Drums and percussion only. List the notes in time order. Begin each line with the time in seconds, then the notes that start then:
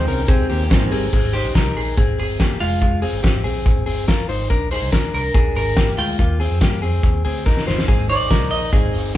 0.08 open hi-hat
0.28 kick, closed hi-hat
0.49 open hi-hat
0.70 kick, snare, clap, closed hi-hat
0.91 open hi-hat
1.13 kick, crash
1.33 open hi-hat
1.55 kick, snare, closed hi-hat
1.77 open hi-hat
1.97 kick, closed hi-hat
2.18 open hi-hat
2.40 kick, snare, closed hi-hat
2.60 open hi-hat
2.81 kick, closed hi-hat
3.02 open hi-hat
3.24 kick, snare, closed hi-hat
3.45 open hi-hat
3.66 kick, closed hi-hat
3.87 open hi-hat
4.08 kick, snare, closed hi-hat
4.29 open hi-hat
4.50 kick, closed hi-hat
4.71 open hi-hat
4.92 kick, snare, closed hi-hat
5.14 open hi-hat
5.35 kick, closed hi-hat
5.55 open hi-hat
5.76 kick, snare, closed hi-hat
5.98 open hi-hat
6.19 kick, closed hi-hat
6.40 open hi-hat
6.61 kick, snare, closed hi-hat
6.83 open hi-hat
7.03 kick, closed hi-hat
7.25 open hi-hat
7.46 kick, snare
7.57 snare
7.68 snare
7.78 snare
7.88 kick, closed hi-hat
8.09 open hi-hat
8.31 kick, snare, closed hi-hat
8.52 open hi-hat
8.73 kick, closed hi-hat
8.94 open hi-hat